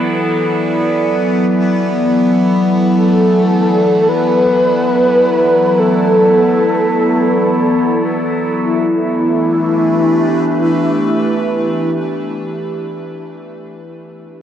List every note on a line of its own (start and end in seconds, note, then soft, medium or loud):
0.00 8.62 E3 medium
0.00 8.62 F#3 medium
0.00 8.62 B3 medium
0.00 8.62 E4 medium
0.00 8.62 A4 medium
0.00 8.62 D5 medium
2.97 4.09 A4 medium
4.08 5.79 B4 loud
5.79 8.02 A4 loud
8.63 11.98 E3 medium
8.63 12.00 E3 medium
8.63 11.98 B3 medium
8.63 11.98 E4 medium
8.79 12.14 A3 medium
8.98 12.33 D4 medium
9.16 12.51 G4 medium
9.30 12.65 B4 medium